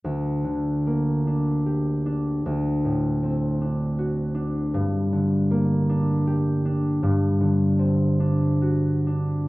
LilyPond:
\new Staff \with { instrumentName = "Harp" } { \time 3/4 \key g \minor \tempo 4 = 78 d,8 d8 bes8 d'8 g'8 d'8 | d,8 a,8 c'8 d'8 fis'8 d'8 | g,8 d8 bes8 d'8 g'8 d'8 | g,8 d8 c'8 d'8 fis'8 d'8 | }